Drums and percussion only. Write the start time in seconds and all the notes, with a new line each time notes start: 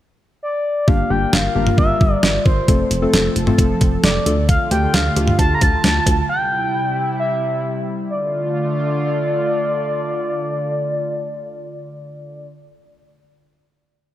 0.88 kick
1.33 snare
1.67 mid tom
1.78 kick
2.01 kick
2.23 snare
2.46 kick
2.68 kick, closed hi-hat
2.91 closed hi-hat
3.13 snare, closed hi-hat
3.36 closed hi-hat
3.47 mid tom
3.58 kick, closed hi-hat
3.81 kick, closed hi-hat
4.04 snare, closed hi-hat
4.26 closed hi-hat
4.49 kick, closed hi-hat
4.71 closed hi-hat
4.94 snare, closed hi-hat
5.16 closed hi-hat
5.28 mid tom
5.39 kick, closed hi-hat
5.61 kick, closed hi-hat
5.84 snare, closed hi-hat
6.07 kick, closed hi-hat